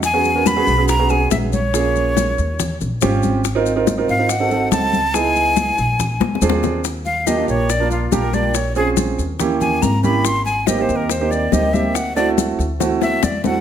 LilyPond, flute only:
\new Staff \with { instrumentName = "Flute" } { \time 4/4 \key bes \dorian \tempo 4 = 141 gis''4 b''4 bes''8 gis''8 e''8 cis''8~ | cis''2~ cis''8 r4. | r4. f''8 ges''4 a''4 | aes''2. r4 |
\key ees \major r8 f''8 ees''8 des''8 d''8 f'8 bes'8 d''8 | des''8 aes'8 r4. aes''8 bes''8 ces'''8 | c'''8 aes''8 \tuplet 3/2 { ees''8 c''8 bes'8 } c''8 d''8 ees''8 fes''8 | fis''8 d''8 r4. e''8 d''8 fis''8 | }